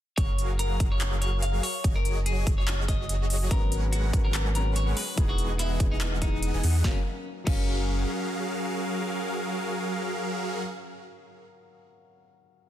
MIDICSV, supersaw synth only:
0, 0, Header, 1, 2, 480
1, 0, Start_track
1, 0, Key_signature, 6, "major"
1, 0, Tempo, 416667
1, 204, Time_signature, 4, 2, 24, 8
1, 14623, End_track
2, 0, Start_track
2, 0, Title_t, "Supersaw synth"
2, 0, Program_c, 0, 81
2, 204, Note_on_c, 0, 68, 71
2, 204, Note_on_c, 0, 77, 80
2, 205, Note_on_c, 0, 54, 74
2, 205, Note_on_c, 0, 66, 69
2, 205, Note_on_c, 0, 70, 67
2, 898, Note_off_c, 0, 54, 0
2, 898, Note_off_c, 0, 66, 0
2, 898, Note_off_c, 0, 68, 0
2, 898, Note_off_c, 0, 70, 0
2, 898, Note_off_c, 0, 77, 0
2, 923, Note_on_c, 0, 54, 85
2, 923, Note_on_c, 0, 68, 85
2, 923, Note_on_c, 0, 70, 81
2, 923, Note_on_c, 0, 77, 100
2, 924, Note_on_c, 0, 66, 81
2, 1870, Note_off_c, 0, 54, 0
2, 1870, Note_off_c, 0, 66, 0
2, 1870, Note_off_c, 0, 68, 0
2, 1870, Note_off_c, 0, 70, 0
2, 1870, Note_off_c, 0, 77, 0
2, 2124, Note_on_c, 0, 54, 91
2, 2124, Note_on_c, 0, 73, 83
2, 2124, Note_on_c, 0, 75, 100
2, 2125, Note_on_c, 0, 66, 83
2, 2125, Note_on_c, 0, 68, 80
2, 2817, Note_off_c, 0, 54, 0
2, 2817, Note_off_c, 0, 75, 0
2, 2818, Note_off_c, 0, 66, 0
2, 2818, Note_off_c, 0, 68, 0
2, 2818, Note_off_c, 0, 73, 0
2, 2845, Note_on_c, 0, 54, 95
2, 2845, Note_on_c, 0, 66, 86
2, 2845, Note_on_c, 0, 68, 88
2, 2845, Note_on_c, 0, 73, 88
2, 2845, Note_on_c, 0, 75, 104
2, 4018, Note_off_c, 0, 54, 0
2, 4018, Note_off_c, 0, 66, 0
2, 4018, Note_off_c, 0, 68, 0
2, 4018, Note_off_c, 0, 73, 0
2, 4018, Note_off_c, 0, 75, 0
2, 4044, Note_on_c, 0, 56, 76
2, 4044, Note_on_c, 0, 68, 70
2, 4044, Note_on_c, 0, 70, 72
2, 4044, Note_on_c, 0, 73, 70
2, 4044, Note_on_c, 0, 78, 84
2, 4045, Note_on_c, 0, 71, 67
2, 4737, Note_off_c, 0, 68, 0
2, 4737, Note_off_c, 0, 70, 0
2, 4737, Note_off_c, 0, 73, 0
2, 4737, Note_off_c, 0, 78, 0
2, 4738, Note_off_c, 0, 56, 0
2, 4738, Note_off_c, 0, 71, 0
2, 4763, Note_on_c, 0, 56, 91
2, 4763, Note_on_c, 0, 68, 81
2, 4763, Note_on_c, 0, 70, 82
2, 4763, Note_on_c, 0, 71, 82
2, 4763, Note_on_c, 0, 73, 81
2, 4763, Note_on_c, 0, 78, 95
2, 5710, Note_off_c, 0, 56, 0
2, 5710, Note_off_c, 0, 68, 0
2, 5710, Note_off_c, 0, 70, 0
2, 5710, Note_off_c, 0, 71, 0
2, 5710, Note_off_c, 0, 73, 0
2, 5710, Note_off_c, 0, 78, 0
2, 5964, Note_on_c, 0, 52, 93
2, 5964, Note_on_c, 0, 59, 85
2, 5964, Note_on_c, 0, 68, 84
2, 5964, Note_on_c, 0, 75, 82
2, 5964, Note_on_c, 0, 78, 103
2, 6657, Note_off_c, 0, 59, 0
2, 6657, Note_off_c, 0, 75, 0
2, 6657, Note_off_c, 0, 78, 0
2, 6658, Note_off_c, 0, 52, 0
2, 6658, Note_off_c, 0, 68, 0
2, 6683, Note_on_c, 0, 75, 89
2, 6684, Note_on_c, 0, 52, 97
2, 6684, Note_on_c, 0, 59, 85
2, 6684, Note_on_c, 0, 68, 85
2, 6684, Note_on_c, 0, 78, 102
2, 7507, Note_off_c, 0, 75, 0
2, 7508, Note_off_c, 0, 52, 0
2, 7508, Note_off_c, 0, 59, 0
2, 7508, Note_off_c, 0, 68, 0
2, 7508, Note_off_c, 0, 78, 0
2, 7534, Note_on_c, 0, 75, 83
2, 7534, Note_on_c, 0, 80, 107
2, 7535, Note_on_c, 0, 52, 96
2, 7535, Note_on_c, 0, 59, 85
2, 7535, Note_on_c, 0, 68, 86
2, 7617, Note_off_c, 0, 75, 0
2, 7617, Note_off_c, 0, 80, 0
2, 7618, Note_off_c, 0, 52, 0
2, 7618, Note_off_c, 0, 59, 0
2, 7618, Note_off_c, 0, 68, 0
2, 7644, Note_on_c, 0, 52, 92
2, 7644, Note_on_c, 0, 59, 86
2, 7644, Note_on_c, 0, 68, 83
2, 7644, Note_on_c, 0, 75, 81
2, 7644, Note_on_c, 0, 78, 101
2, 7857, Note_off_c, 0, 52, 0
2, 7857, Note_off_c, 0, 59, 0
2, 7857, Note_off_c, 0, 78, 0
2, 7858, Note_off_c, 0, 68, 0
2, 7858, Note_off_c, 0, 75, 0
2, 7885, Note_on_c, 0, 54, 86
2, 7885, Note_on_c, 0, 66, 80
2, 7885, Note_on_c, 0, 68, 78
2, 7885, Note_on_c, 0, 70, 80
2, 7885, Note_on_c, 0, 77, 96
2, 8026, Note_off_c, 0, 54, 0
2, 8026, Note_off_c, 0, 66, 0
2, 8026, Note_off_c, 0, 68, 0
2, 8026, Note_off_c, 0, 70, 0
2, 8026, Note_off_c, 0, 77, 0
2, 8603, Note_on_c, 0, 54, 85
2, 8603, Note_on_c, 0, 66, 80
2, 8603, Note_on_c, 0, 68, 80
2, 8603, Note_on_c, 0, 70, 84
2, 8603, Note_on_c, 0, 77, 98
2, 12231, Note_off_c, 0, 54, 0
2, 12231, Note_off_c, 0, 66, 0
2, 12231, Note_off_c, 0, 68, 0
2, 12231, Note_off_c, 0, 70, 0
2, 12231, Note_off_c, 0, 77, 0
2, 14623, End_track
0, 0, End_of_file